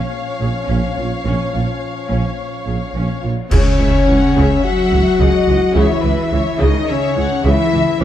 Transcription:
Already playing: F3 C#4 C#5 F5
0.40 A#1 A#2 G#4
0.68 A#1 A#2 C#4
0.97 A#1 A#2 F4
1.24 A#1 A#2 C#4
1.53 A#1 A#2 F4
2.09 A#1 A#2 C#4
2.66 A#1 A#2 G#4
2.95 A#1 A#2 C#4
3.22 A#1 A#2 F4
3.50 C#2 C#3 C#4 C#5, concert bass drum, crash
3.78 C#2 E3 G#3 E5
4.06 C#2 C#3 E3 F#5
4.36 C#2 C#3 E5
4.63 F#3 F#4 F#5
4.91 C#2 C#3 E3
5.19 C#2 C#3 D#5
5.46 C#2 E3 G#3
5.75 C#2 C#3 E3 E4 C#5 E5
6.03 C#2 E3 G#3 B4
6.31 C#2 C#3 E3 C#5
6.59 C#2 C#3 D#3 D#4 D#5
6.88 C#3 C#4 C#5 E5
7.15 C#2 C#3 E3 F#5
7.44 C#2 C#3 E3 E4 E5
7.73 C#2 E3 G#3
8.00 C#2 E3 C#5 E5

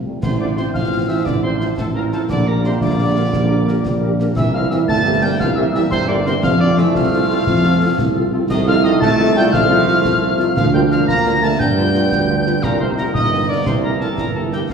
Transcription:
Already playing: C2
0.05 C3 F3 G3 A3
0.22 A1 C3 F3 C4 C5 C6, concert bass drum, snare, crash
0.39 D3 F3 C4 F4 C5 D5 D6
0.56 C3 F3 C4 F4 C5 C6, snare
0.74 A1 F3 F5 F6, concert bass drum, snare
0.91 F3 C4 F4 C5
1.08 E3 F3 C4 F4 C5 E5 E6
1.25 A1 D3 D5 D6, concert bass drum, snare
1.43 C3 F3 C4 F4 C5 C6
1.59 C3 F3 C4 F4 C5 C6, snare
1.77 A1 A2 A4 A5, concert bass drum, snare
1.94 A#2 F3 C4 F4 A#4 C5 A#5
2.12 A2 F3 C4 F4 A4 C5 A5, snare
2.29 A#1 D3 G3 A#3 D5 D6, concert bass drum, snare
2.46 A#2 A#3 D4 G4 A#4 A#5
2.63 C3 A#3 D4 G4 A#4 C5 C6, snare
2.81 A#1 D3 D5 D6, concert bass drum, snare
2.98 A#3 D4 G4 A#4
3.15 A#3 D4 G4 A#4
3.33 A#1, concert bass drum, snare
3.50 A#3 D4 G4 A#4
3.67 A#3 D4 G4 A#4, snare
3.85 A#1, concert bass drum, snare
4.02 A#3 D4 G4 A#4
4.19 A#3 D4 G4 A#4, snare
4.36 C2 E3 G3 A#3 E5 E6, concert bass drum, snare, crash
4.53 F3 A#3 C4 G4 A#4 F5 F6
4.70 E3 A#3 C4 G4 A#4 E5 E6, snare
4.87 G1 A3 A5 A6, concert bass drum, snare
5.04 A#3 C4 G4 A#4
5.21 G3 A#3 C4 G4 A#4 G5 G6
5.40 C2 F3 F5 F6, concert bass drum, snare
5.55 E3 A#3 C4 G4 A#4 E5 E6
5.73 E3 A#3 C4 G4 A#4 E5 E6, snare
5.91 G1 C3 C5 C6, concert bass drum, snare
6.08 D3 A#3 C4 G4 A#4 D5 D6
6.25 C3 A#3 C4 G4 A#4 C5 C6, snare
6.42 F2 F3 A3 F5 F6, concert bass drum, snare
6.60 D3 A3 C4 F4 A4 D5 D6
6.78 E3 A3 C4 F4 A4 E5 E6, snare
6.95 C2 F3 F5 F6, concert bass drum, snare
7.13 A3 C4 F4 A4
7.29 A3 C4 F4 A4
7.46 F2, concert bass drum, snare
7.64 A3 C4 F4 A4
7.80 A3 C4 F4 A4
7.98 C2, concert bass drum, snare
8.15 A3 C4 F4 A4
8.32 A3 C4 F4 A4
8.50 C2 D#3 A3 D#5 D#6, concert bass drum, snare, crash
8.67 F3 A3 D#4 F4 A4 F5 F6
8.84 D#3 A3 D#4 F4 A4 D#5 D#6, snare
9.00 C2 A3 A5 A6, concert bass drum, snare
9.19 A3 D#4 F4 A4
9.35 G3 A3 D#4 F4 A4 G5 G6
9.53 C2 F3 F5 F6, concert bass drum, snare
9.70 A3 D#4 F4 A4
9.88 A3 D#4 F4 A4, snare
10.05 C2, concert bass drum, snare
10.22 A3 D#4 F4 A4
10.39 A3 D#4 F4 A4, snare
10.56 D2 F3 A#3 F5 F6, concert bass drum, snare
10.73 G3 A#3 D4 F4 A#4 G5 G6
10.91 F3 A#3 D4 F4 A#4 F5 F6, snare
11.08 D2 A#3 A#5 A#6, concert bass drum, snare
11.26 A#3 D4 F4 A#4
11.42 A3 A#3 D4 F4 A#4 A5 A6
11.59 G2 G3 B3 G5 G6, concert bass drum, snare
11.77 B3 D4 F4 B4
11.95 B3 D4 F4 B4, snare
12.12 D2, concert bass drum, snare
12.29 B3 D4 F4 B4
12.45 B3 D4 F4 B4, snare
12.62 C2 A#2 D#3 A#3 A#4 A#5, concert bass drum, snare, crash
12.80 C3 A#3 D#4 G4 A#4 C5 C6
12.97 A#2 A#3 D#4 G4 A#4 A#5, snare
13.14 G1 D#3 D#5 D#6, concert bass drum, snare
13.32 A#3 D#4 G4 A#4
13.48 D3 A#3 D#4 G4 A#4 D5 D6
13.65 C2 C3 E3 C5 C6, concert bass drum, snare
13.82 A#2 A#3 E4 G4 A#4 A#5
14.00 A2 A#3 E4 G4 A4 A#4 A5, snare
14.17 G1 A#2 A#4 A#5, concert bass drum, snare
14.34 A2 A#3 E4 G4 A4 A#4 A5
14.52 G2 A#3 E4 G4 A#4 G5, snare
14.69 F2 D3 A#3 F4 F5, concert bass drum, snare

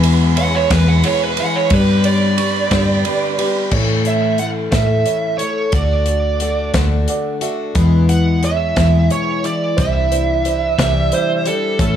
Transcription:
Already playing: E2 B2 E3 G#3 B3 G#4 B4 E5 B5
0.03 E4 G#4 B4, ride
0.37 E3 G#3 B3 E4 G#4 C#5 F#5, ride
0.55 C#5
0.70 E2 B2 E3 G#3 B3 G#4 B4, kick, snare, ride
0.88 F#5
1.03 E4 G#4 B4 C#5, ride
1.24 B4
1.37 G#3 B3 E4 G#4 B4 F#5, ride
1.42 E3
1.56 C#5
1.70 G2 D3 G3 B3 D4 G4 B4 D5 B5, kick, ride
2.04 D4 G4 C#5 D5, ride
2.37 G3 B3 D4 G4 C#6, ride
2.42 G4
2.71 G2 D3 G3 B3 D4 G4, kick, snare, ride
3.05 D4 G4 B4, ride
3.38 G3 B3 D4 G4 B4, ride
3.71 A2 E3 A3 C#4 E4 A4 C#5, kick, crash
4.05 E4 A4 C#5 E5, closed hi-hat
4.38 E3 A3 C#4 E4 A4 E5 F#5, closed hi-hat
4.72 A2 E3 A3 C#4 A4 E5, kick, snare, closed hi-hat
5.06 E4 A4 C#5, closed hi-hat
5.38 C#4 E4 A4 C#5, closed hi-hat
5.43 A3
5.72 D2 D3 A3 D4 F#4 A4 D5, kick, closed hi-hat
6.06 F#4 A4 D5, closed hi-hat
6.40 D3 A3 D4 F#4 A4 D5, closed hi-hat
6.44 F#4
6.74 D2 D3 A3 D4 F#4, kick, snare, closed hi-hat
7.08 F#4 A4 D5 F#5, closed hi-hat
7.41 A3 D4 F#4 A4 E5 A5, closed hi-hat
7.75 E2 B2 E3 G#3 B3 E4 G#4 B4, kick, closed hi-hat
8.09 E4 G#4 B4 F#5, closed hi-hat
8.43 E3 G#3 B3 E4 G#4 C#5 E5, closed hi-hat
8.76 E2 B2 E3 G#3 B3 E4, kick, snare, closed hi-hat
9.10 E4 G#4 C#5, closed hi-hat
9.43 G#3 B3 E4 G#4 D5, closed hi-hat
9.48 E3
9.77 C2 C3 E3 G3 D4 E4 C5 E5, kick, closed hi-hat
9.81 E4
10.11 D4 E4 C5, closed hi-hat
10.45 E3 G3 D4 E4 C5, closed hi-hat
10.79 C2 C3 E3 G3 D4 E4 E5, kick, snare, closed hi-hat
11.12 D4 E4 C5, closed hi-hat
11.45 D4 E4 G4 A4, closed hi-hat
11.50 G3
11.79 A1 A2 E3 A3 C#4 E4 A4, kick, closed hi-hat

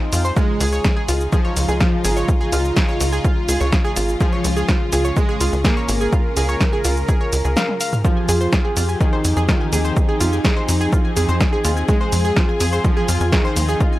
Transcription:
Already playing: F3 C4 D#4 G#4 G5
0.13 F2 F4 F5, open hi-hat, shaker
0.25 C5 C6, shaker
0.36 C#3 G#3 D#4 F4 G#4 F5, kick, shaker
0.60 C#2 G#4 G#5, open hi-hat, shaker
0.73 C#5 C#6, shaker
0.84 kick, snare, shaker
0.97 G#4 G#5
1.08 C#2 F4 F5, open hi-hat, shaker
1.21 shaker
1.33 F3 F4 G#4 G#5, kick, shaker
1.45 C#5 C#6
1.56 C#2, open hi-hat, shaker
1.68 C#2 G#4 G#5, shaker
1.80 F3 F4 F5, kick, snare, shaker
2.04 G#1 G#4 G#5, open hi-hat, shaker
2.17 C#5 C#6, shaker
2.29 kick, shaker
2.41 G#4 G#5
2.52 C#2 F4 F5, open hi-hat, shaker
2.65 shaker
2.76 G#4 G#5, kick, snare, shaker
2.89 C#5 C#6
3.00 C#2, open hi-hat, shaker
3.13 G#4 G#5, shaker
3.24 F4 F5, kick, shaker
3.48 C#2 G#4 G#5, open hi-hat, shaker
3.61 C#2 C#5 C#6, shaker
3.72 kick, snare, shaker
3.85 G#4 G#5
3.96 G#1 F4 F5, open hi-hat, shaker
4.09 shaker
4.20 F3 C#4 F4 G#4 G#5, kick, shaker
4.33 C#5 C#6
4.44 C#2, open hi-hat, shaker
4.57 G#4 G#5, shaker
4.69 F4 F5, kick, snare, shaker
4.92 C#2 G#4 G#5, open hi-hat, shaker
5.05 C#5 C#6, shaker
5.16 G#3 G#4, kick, shaker
5.29 G#4 G#5
5.41 C#2 F4 F5, open hi-hat, shaker
5.53 C#2, shaker
5.64 A#3 G#4 A#4 G#5, kick, snare, shaker
5.77 C#5 C#6
5.89 G#1, open hi-hat, shaker
6.01 G#4 G#5, shaker
6.13 F4 F5, kick, shaker
6.37 C#2 G#4 G#5, open hi-hat, shaker
6.49 C#5 C#6, shaker
6.61 kick, snare, shaker
6.73 G#4 G#5
6.85 C#2 F4 F5, open hi-hat, shaker
6.97 shaker
7.09 G#4 G#5, kick, shaker
7.21 C#5 C#6
7.33 C#2, open hi-hat, shaker
7.45 C#2 G#4 G#5, shaker
7.57 F5 F6, snare, high tom, shaker
7.69 high tom
7.81 F5 F6, open hi-hat, shaker
7.93 F6, mid tom, shaker
8.04 F3 C4 F4 G4 G#4 F5, kick, shaker
8.17 G#5 G#6
8.29 F2 G#4 G#5, open hi-hat, shaker
8.41 C5 C6, shaker
8.53 kick, snare, shaker
8.65 G#4 G#5
8.77 F2 F4 F5, open hi-hat, shaker
8.89 G#5 G#6, shaker
9.00 D#3 D#4 G#4 G#5, kick, shaker
9.13 C5 C6
9.25 F2, open hi-hat, shaker
9.37 F2 G#4 G#5, shaker
9.49 D#3 F4 F5, kick, snare, shaker
9.61 G#5 G#6
9.72 D#2 G#4 G#5, open hi-hat, shaker
9.85 C5 C6, shaker
9.97 kick, shaker
10.09 G#4 G#5
10.20 F2 F4 F5, open hi-hat, shaker
10.33 G#5 G#6, shaker
10.44 G#4 G#5, kick, snare, shaker
10.57 C5 C6
10.69 F2, open hi-hat, shaker
10.81 G#4 G#5, shaker
10.93 F4 F5, kick, shaker
11.05 G#5 G#6
11.17 F2 G#4 G#5, open hi-hat, shaker
11.29 F2 C5 C6, shaker
11.41 kick, snare, shaker
11.53 G#4 G#5
11.65 D#2 F4 F5, open hi-hat, shaker
11.77 G#5 G#6, shaker
11.88 G#3 F4 G#4 G#5, kick, shaker
12.01 C5 C6
12.12 F2, open hi-hat, shaker
12.25 G#4 G#5, shaker
12.36 F4 F5, kick, snare, shaker
12.49 G#5 G#6
12.60 F2 G#4 G#5, open hi-hat, shaker
12.73 C5 C6, shaker
12.84 F3 F4, kick, shaker
12.97 G#4 G#5
13.08 F2 F4 F5, open hi-hat, shaker
13.21 F2 G#5 G#6, shaker
13.32 D#3 D#4 G#4 G#5, kick, snare, shaker
13.45 C5 C6
13.56 D#2, open hi-hat, shaker
13.69 G#4 G#5, shaker
13.80 F4 F5, kick, shaker
13.93 G#5 G#6

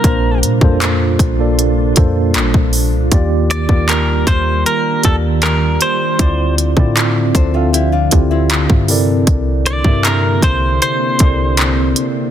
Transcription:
Already playing: C3 G3 A#3 D4 A#4
0.03 A#1 A#2 A#3 D4 F4 A#4 C5, kick, closed hi-hat
0.43 A#2, closed hi-hat
0.61 F2 A#2 A#3 D4 A4 C5, kick
0.82 clap, closed hi-hat
1.19 A#1, kick, closed hi-hat
1.38 A#2 A#3 D4 A4 D5
1.59 closed hi-hat
1.96 F2 A#2 A#3 D4 A4 C5, kick, closed hi-hat
2.34 A1, clap, closed hi-hat
2.54 A#1, kick
2.73 open hi-hat
2.93 C2
3.11 D#2 D#3 G3 A#3 F4 G4 D5, kick, closed hi-hat
3.51 D5, closed hi-hat
3.69 D#2 D#3 A#3 F4 G4 A#4, kick
3.89 A#4, clap, closed hi-hat
4.27 D#2 C5, kick, closed hi-hat
4.66 A#4, closed hi-hat
5.03 D#2 D#3 A#3 F4 G4 A4 D5, kick, closed hi-hat
5.42 A#4, clap, closed hi-hat
5.81 C5, closed hi-hat
6.19 D2 D3 F3 C4 D4 E4 F4 D5, kick, closed hi-hat
6.58 closed hi-hat
6.77 A2 D3 C4 E4 F4 D5, kick
6.97 clap, closed hi-hat
7.35 D2 A4 C5, kick, closed hi-hat
7.54 D3 C4 F4 A4 E5 F5
7.73 E4 G4, closed hi-hat
7.92 D4 F4
8.11 D2 D3 C4 E4 F4 G4, kick, closed hi-hat
8.31 C4 E4
8.50 clap, closed hi-hat
8.70 G2, kick
8.88 C3 A#3 C4 E4 A4 A#4 D5, open hi-hat
9.27 C2, kick, closed hi-hat
9.66 D5, closed hi-hat
9.84 G2 C3 C4 E4 G4 A#4 E5, kick
10.05 A#4, clap, closed hi-hat
10.42 C2 C5, kick, closed hi-hat
10.82 C5, closed hi-hat
11.19 C2 C3 C4 E4 A4 A#4 D5, kick, closed hi-hat
11.57 clap, closed hi-hat
11.96 closed hi-hat

